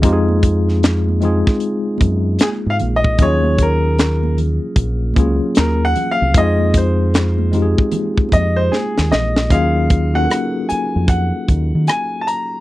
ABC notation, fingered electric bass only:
X:1
M:4/4
L:1/16
Q:"Swing 16ths" 1/4=76
K:Ebdor
V:1 name="Fingered electric bass" clef=bass
F,,6- F,, z3 G,,2 z A,, B,,,2 | E,,6- E,, z B,,,2 D,, z E,,2 z C,, | F,,6- F,, z3 F,,2 z E,, B,,,2 | E,,4 z3 F,,2 z E,, E, z4 |]